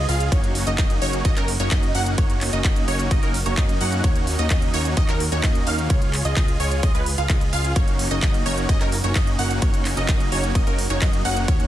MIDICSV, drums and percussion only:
0, 0, Header, 1, 2, 480
1, 0, Start_track
1, 0, Key_signature, 6, "major"
1, 0, Tempo, 465116
1, 329, Time_signature, 4, 2, 24, 8
1, 12043, End_track
2, 0, Start_track
2, 0, Title_t, "Drums"
2, 89, Note_on_c, 9, 46, 94
2, 193, Note_off_c, 9, 46, 0
2, 210, Note_on_c, 9, 42, 39
2, 313, Note_off_c, 9, 42, 0
2, 330, Note_on_c, 9, 36, 121
2, 330, Note_on_c, 9, 42, 71
2, 330, Note_on_c, 9, 51, 68
2, 433, Note_off_c, 9, 36, 0
2, 433, Note_off_c, 9, 42, 0
2, 433, Note_off_c, 9, 51, 0
2, 450, Note_on_c, 9, 42, 41
2, 553, Note_off_c, 9, 42, 0
2, 569, Note_on_c, 9, 46, 110
2, 672, Note_off_c, 9, 46, 0
2, 689, Note_on_c, 9, 42, 40
2, 793, Note_off_c, 9, 42, 0
2, 808, Note_on_c, 9, 39, 127
2, 809, Note_on_c, 9, 42, 70
2, 809, Note_on_c, 9, 51, 68
2, 810, Note_on_c, 9, 36, 123
2, 911, Note_off_c, 9, 39, 0
2, 912, Note_off_c, 9, 42, 0
2, 912, Note_off_c, 9, 51, 0
2, 913, Note_off_c, 9, 36, 0
2, 929, Note_on_c, 9, 42, 42
2, 1032, Note_off_c, 9, 42, 0
2, 1049, Note_on_c, 9, 46, 93
2, 1152, Note_off_c, 9, 46, 0
2, 1169, Note_on_c, 9, 42, 42
2, 1272, Note_off_c, 9, 42, 0
2, 1289, Note_on_c, 9, 42, 68
2, 1289, Note_on_c, 9, 51, 67
2, 1290, Note_on_c, 9, 36, 122
2, 1392, Note_off_c, 9, 42, 0
2, 1392, Note_off_c, 9, 51, 0
2, 1393, Note_off_c, 9, 36, 0
2, 1409, Note_on_c, 9, 39, 39
2, 1409, Note_on_c, 9, 42, 44
2, 1512, Note_off_c, 9, 39, 0
2, 1513, Note_off_c, 9, 42, 0
2, 1528, Note_on_c, 9, 46, 102
2, 1632, Note_off_c, 9, 46, 0
2, 1649, Note_on_c, 9, 42, 42
2, 1752, Note_off_c, 9, 42, 0
2, 1767, Note_on_c, 9, 39, 127
2, 1768, Note_on_c, 9, 42, 70
2, 1768, Note_on_c, 9, 51, 71
2, 1771, Note_on_c, 9, 36, 123
2, 1870, Note_off_c, 9, 39, 0
2, 1871, Note_off_c, 9, 42, 0
2, 1871, Note_off_c, 9, 51, 0
2, 1874, Note_off_c, 9, 36, 0
2, 1889, Note_on_c, 9, 42, 43
2, 1992, Note_off_c, 9, 42, 0
2, 2009, Note_on_c, 9, 46, 97
2, 2112, Note_off_c, 9, 46, 0
2, 2129, Note_on_c, 9, 42, 40
2, 2233, Note_off_c, 9, 42, 0
2, 2249, Note_on_c, 9, 42, 68
2, 2249, Note_on_c, 9, 51, 66
2, 2250, Note_on_c, 9, 36, 127
2, 2352, Note_off_c, 9, 42, 0
2, 2352, Note_off_c, 9, 51, 0
2, 2354, Note_off_c, 9, 36, 0
2, 2370, Note_on_c, 9, 42, 41
2, 2473, Note_off_c, 9, 42, 0
2, 2490, Note_on_c, 9, 39, 40
2, 2491, Note_on_c, 9, 46, 108
2, 2593, Note_off_c, 9, 39, 0
2, 2594, Note_off_c, 9, 46, 0
2, 2610, Note_on_c, 9, 42, 39
2, 2713, Note_off_c, 9, 42, 0
2, 2730, Note_on_c, 9, 36, 127
2, 2730, Note_on_c, 9, 39, 126
2, 2731, Note_on_c, 9, 42, 68
2, 2731, Note_on_c, 9, 51, 64
2, 2833, Note_off_c, 9, 36, 0
2, 2833, Note_off_c, 9, 39, 0
2, 2834, Note_off_c, 9, 42, 0
2, 2834, Note_off_c, 9, 51, 0
2, 2851, Note_on_c, 9, 42, 41
2, 2954, Note_off_c, 9, 42, 0
2, 2971, Note_on_c, 9, 46, 97
2, 3074, Note_off_c, 9, 46, 0
2, 3091, Note_on_c, 9, 42, 42
2, 3194, Note_off_c, 9, 42, 0
2, 3210, Note_on_c, 9, 36, 127
2, 3211, Note_on_c, 9, 42, 68
2, 3211, Note_on_c, 9, 51, 64
2, 3313, Note_off_c, 9, 36, 0
2, 3314, Note_off_c, 9, 42, 0
2, 3314, Note_off_c, 9, 51, 0
2, 3331, Note_on_c, 9, 42, 43
2, 3434, Note_off_c, 9, 42, 0
2, 3450, Note_on_c, 9, 46, 108
2, 3553, Note_off_c, 9, 46, 0
2, 3569, Note_on_c, 9, 42, 41
2, 3672, Note_off_c, 9, 42, 0
2, 3689, Note_on_c, 9, 39, 125
2, 3689, Note_on_c, 9, 42, 68
2, 3689, Note_on_c, 9, 51, 66
2, 3690, Note_on_c, 9, 36, 127
2, 3792, Note_off_c, 9, 39, 0
2, 3793, Note_off_c, 9, 36, 0
2, 3793, Note_off_c, 9, 42, 0
2, 3793, Note_off_c, 9, 51, 0
2, 3809, Note_on_c, 9, 42, 41
2, 3912, Note_off_c, 9, 42, 0
2, 3928, Note_on_c, 9, 46, 97
2, 4032, Note_off_c, 9, 46, 0
2, 4049, Note_on_c, 9, 42, 40
2, 4152, Note_off_c, 9, 42, 0
2, 4169, Note_on_c, 9, 42, 65
2, 4169, Note_on_c, 9, 51, 65
2, 4170, Note_on_c, 9, 36, 127
2, 4272, Note_off_c, 9, 42, 0
2, 4272, Note_off_c, 9, 51, 0
2, 4273, Note_off_c, 9, 36, 0
2, 4288, Note_on_c, 9, 42, 39
2, 4392, Note_off_c, 9, 42, 0
2, 4408, Note_on_c, 9, 46, 116
2, 4511, Note_off_c, 9, 46, 0
2, 4529, Note_on_c, 9, 42, 38
2, 4632, Note_off_c, 9, 42, 0
2, 4648, Note_on_c, 9, 39, 127
2, 4648, Note_on_c, 9, 42, 65
2, 4648, Note_on_c, 9, 51, 65
2, 4650, Note_on_c, 9, 36, 127
2, 4751, Note_off_c, 9, 39, 0
2, 4751, Note_off_c, 9, 42, 0
2, 4751, Note_off_c, 9, 51, 0
2, 4753, Note_off_c, 9, 36, 0
2, 4769, Note_on_c, 9, 42, 38
2, 4872, Note_off_c, 9, 42, 0
2, 4888, Note_on_c, 9, 46, 95
2, 4991, Note_off_c, 9, 46, 0
2, 5008, Note_on_c, 9, 42, 41
2, 5112, Note_off_c, 9, 42, 0
2, 5128, Note_on_c, 9, 42, 64
2, 5128, Note_on_c, 9, 51, 67
2, 5130, Note_on_c, 9, 36, 127
2, 5232, Note_off_c, 9, 42, 0
2, 5232, Note_off_c, 9, 51, 0
2, 5233, Note_off_c, 9, 36, 0
2, 5248, Note_on_c, 9, 39, 39
2, 5249, Note_on_c, 9, 42, 40
2, 5352, Note_off_c, 9, 39, 0
2, 5352, Note_off_c, 9, 42, 0
2, 5369, Note_on_c, 9, 46, 109
2, 5472, Note_off_c, 9, 46, 0
2, 5490, Note_on_c, 9, 42, 40
2, 5593, Note_off_c, 9, 42, 0
2, 5610, Note_on_c, 9, 36, 127
2, 5610, Note_on_c, 9, 39, 127
2, 5610, Note_on_c, 9, 42, 66
2, 5610, Note_on_c, 9, 51, 67
2, 5713, Note_off_c, 9, 36, 0
2, 5713, Note_off_c, 9, 39, 0
2, 5714, Note_off_c, 9, 42, 0
2, 5714, Note_off_c, 9, 51, 0
2, 5730, Note_on_c, 9, 42, 40
2, 5833, Note_off_c, 9, 42, 0
2, 5848, Note_on_c, 9, 46, 99
2, 5952, Note_off_c, 9, 46, 0
2, 5970, Note_on_c, 9, 42, 37
2, 6073, Note_off_c, 9, 42, 0
2, 6089, Note_on_c, 9, 42, 65
2, 6089, Note_on_c, 9, 51, 70
2, 6090, Note_on_c, 9, 36, 126
2, 6192, Note_off_c, 9, 42, 0
2, 6192, Note_off_c, 9, 51, 0
2, 6193, Note_off_c, 9, 36, 0
2, 6210, Note_on_c, 9, 42, 38
2, 6313, Note_off_c, 9, 42, 0
2, 6330, Note_on_c, 9, 39, 38
2, 6331, Note_on_c, 9, 46, 115
2, 6433, Note_off_c, 9, 39, 0
2, 6434, Note_off_c, 9, 46, 0
2, 6450, Note_on_c, 9, 42, 38
2, 6554, Note_off_c, 9, 42, 0
2, 6569, Note_on_c, 9, 39, 120
2, 6570, Note_on_c, 9, 36, 124
2, 6570, Note_on_c, 9, 42, 64
2, 6570, Note_on_c, 9, 51, 66
2, 6672, Note_off_c, 9, 39, 0
2, 6673, Note_off_c, 9, 36, 0
2, 6673, Note_off_c, 9, 42, 0
2, 6673, Note_off_c, 9, 51, 0
2, 6690, Note_on_c, 9, 42, 38
2, 6793, Note_off_c, 9, 42, 0
2, 6810, Note_on_c, 9, 46, 96
2, 6913, Note_off_c, 9, 46, 0
2, 6929, Note_on_c, 9, 42, 39
2, 7033, Note_off_c, 9, 42, 0
2, 7049, Note_on_c, 9, 42, 66
2, 7049, Note_on_c, 9, 51, 66
2, 7050, Note_on_c, 9, 36, 127
2, 7152, Note_off_c, 9, 42, 0
2, 7152, Note_off_c, 9, 51, 0
2, 7153, Note_off_c, 9, 36, 0
2, 7170, Note_on_c, 9, 42, 39
2, 7273, Note_off_c, 9, 42, 0
2, 7289, Note_on_c, 9, 46, 106
2, 7392, Note_off_c, 9, 46, 0
2, 7410, Note_on_c, 9, 42, 39
2, 7513, Note_off_c, 9, 42, 0
2, 7529, Note_on_c, 9, 39, 117
2, 7530, Note_on_c, 9, 36, 124
2, 7530, Note_on_c, 9, 42, 65
2, 7530, Note_on_c, 9, 51, 65
2, 7632, Note_off_c, 9, 39, 0
2, 7633, Note_off_c, 9, 36, 0
2, 7633, Note_off_c, 9, 42, 0
2, 7633, Note_off_c, 9, 51, 0
2, 7649, Note_on_c, 9, 42, 38
2, 7753, Note_off_c, 9, 42, 0
2, 7769, Note_on_c, 9, 46, 99
2, 7872, Note_off_c, 9, 46, 0
2, 7889, Note_on_c, 9, 42, 36
2, 7992, Note_off_c, 9, 42, 0
2, 8008, Note_on_c, 9, 42, 67
2, 8008, Note_on_c, 9, 51, 67
2, 8009, Note_on_c, 9, 36, 126
2, 8111, Note_off_c, 9, 42, 0
2, 8111, Note_off_c, 9, 51, 0
2, 8112, Note_off_c, 9, 36, 0
2, 8128, Note_on_c, 9, 42, 38
2, 8232, Note_off_c, 9, 42, 0
2, 8248, Note_on_c, 9, 46, 111
2, 8351, Note_off_c, 9, 46, 0
2, 8369, Note_on_c, 9, 42, 38
2, 8472, Note_off_c, 9, 42, 0
2, 8489, Note_on_c, 9, 36, 125
2, 8489, Note_on_c, 9, 39, 115
2, 8489, Note_on_c, 9, 42, 64
2, 8489, Note_on_c, 9, 51, 69
2, 8592, Note_off_c, 9, 36, 0
2, 8592, Note_off_c, 9, 39, 0
2, 8593, Note_off_c, 9, 42, 0
2, 8593, Note_off_c, 9, 51, 0
2, 8609, Note_on_c, 9, 42, 39
2, 8713, Note_off_c, 9, 42, 0
2, 8729, Note_on_c, 9, 46, 93
2, 8832, Note_off_c, 9, 46, 0
2, 8850, Note_on_c, 9, 42, 40
2, 8953, Note_off_c, 9, 42, 0
2, 8969, Note_on_c, 9, 36, 127
2, 8969, Note_on_c, 9, 42, 65
2, 8969, Note_on_c, 9, 51, 69
2, 9072, Note_off_c, 9, 36, 0
2, 9073, Note_off_c, 9, 42, 0
2, 9073, Note_off_c, 9, 51, 0
2, 9088, Note_on_c, 9, 39, 36
2, 9089, Note_on_c, 9, 42, 41
2, 9192, Note_off_c, 9, 39, 0
2, 9192, Note_off_c, 9, 42, 0
2, 9208, Note_on_c, 9, 46, 107
2, 9312, Note_off_c, 9, 46, 0
2, 9329, Note_on_c, 9, 42, 39
2, 9432, Note_off_c, 9, 42, 0
2, 9448, Note_on_c, 9, 39, 119
2, 9448, Note_on_c, 9, 42, 64
2, 9448, Note_on_c, 9, 51, 68
2, 9449, Note_on_c, 9, 36, 121
2, 9551, Note_off_c, 9, 39, 0
2, 9552, Note_off_c, 9, 36, 0
2, 9552, Note_off_c, 9, 42, 0
2, 9552, Note_off_c, 9, 51, 0
2, 9569, Note_on_c, 9, 42, 38
2, 9672, Note_off_c, 9, 42, 0
2, 9689, Note_on_c, 9, 46, 94
2, 9792, Note_off_c, 9, 46, 0
2, 9809, Note_on_c, 9, 42, 37
2, 9913, Note_off_c, 9, 42, 0
2, 9928, Note_on_c, 9, 42, 68
2, 9928, Note_on_c, 9, 51, 73
2, 9929, Note_on_c, 9, 36, 120
2, 10031, Note_off_c, 9, 42, 0
2, 10031, Note_off_c, 9, 51, 0
2, 10033, Note_off_c, 9, 36, 0
2, 10048, Note_on_c, 9, 42, 40
2, 10151, Note_off_c, 9, 42, 0
2, 10168, Note_on_c, 9, 39, 36
2, 10169, Note_on_c, 9, 46, 106
2, 10271, Note_off_c, 9, 39, 0
2, 10272, Note_off_c, 9, 46, 0
2, 10289, Note_on_c, 9, 42, 40
2, 10393, Note_off_c, 9, 42, 0
2, 10408, Note_on_c, 9, 39, 117
2, 10409, Note_on_c, 9, 42, 67
2, 10409, Note_on_c, 9, 51, 72
2, 10410, Note_on_c, 9, 36, 119
2, 10511, Note_off_c, 9, 39, 0
2, 10512, Note_off_c, 9, 42, 0
2, 10512, Note_off_c, 9, 51, 0
2, 10513, Note_off_c, 9, 36, 0
2, 10530, Note_on_c, 9, 42, 40
2, 10633, Note_off_c, 9, 42, 0
2, 10650, Note_on_c, 9, 46, 89
2, 10753, Note_off_c, 9, 46, 0
2, 10770, Note_on_c, 9, 42, 41
2, 10873, Note_off_c, 9, 42, 0
2, 10890, Note_on_c, 9, 36, 121
2, 10890, Note_on_c, 9, 42, 66
2, 10890, Note_on_c, 9, 51, 71
2, 10993, Note_off_c, 9, 36, 0
2, 10993, Note_off_c, 9, 42, 0
2, 10993, Note_off_c, 9, 51, 0
2, 11010, Note_on_c, 9, 42, 40
2, 11114, Note_off_c, 9, 42, 0
2, 11130, Note_on_c, 9, 46, 99
2, 11233, Note_off_c, 9, 46, 0
2, 11250, Note_on_c, 9, 42, 39
2, 11353, Note_off_c, 9, 42, 0
2, 11369, Note_on_c, 9, 39, 119
2, 11370, Note_on_c, 9, 36, 115
2, 11370, Note_on_c, 9, 42, 68
2, 11370, Note_on_c, 9, 51, 72
2, 11473, Note_off_c, 9, 36, 0
2, 11473, Note_off_c, 9, 39, 0
2, 11473, Note_off_c, 9, 42, 0
2, 11473, Note_off_c, 9, 51, 0
2, 11490, Note_on_c, 9, 42, 42
2, 11593, Note_off_c, 9, 42, 0
2, 11610, Note_on_c, 9, 46, 89
2, 11713, Note_off_c, 9, 46, 0
2, 11729, Note_on_c, 9, 42, 38
2, 11832, Note_off_c, 9, 42, 0
2, 11850, Note_on_c, 9, 36, 122
2, 11850, Note_on_c, 9, 42, 73
2, 11850, Note_on_c, 9, 51, 72
2, 11953, Note_off_c, 9, 36, 0
2, 11953, Note_off_c, 9, 42, 0
2, 11953, Note_off_c, 9, 51, 0
2, 11969, Note_on_c, 9, 42, 43
2, 12043, Note_off_c, 9, 42, 0
2, 12043, End_track
0, 0, End_of_file